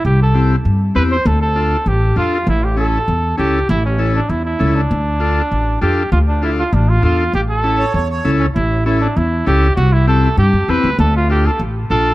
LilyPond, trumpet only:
\new Staff \with { instrumentName = "Trumpet" } { \time 4/4 \key d \minor \tempo 4 = 197 g'8 a'4 r4. b'8 c''8 | a'8 a'4. g'4 f'4 | e'8 g'8 a'2 g'4 | e'8 cis'4 d'8 e'8 e'4 d'8~ |
d'2. g'4 | f'8 d'8 e'8 f'8 d'8 f'8 f'4 | g'8 a'2 r4 cis'8 | e'4 e'8 d'8 e'4 g'4 |
fis'8 e'8 a'4 g'4 b'4 | a'8 f'8 g'8 a'8 r4 a'4 | }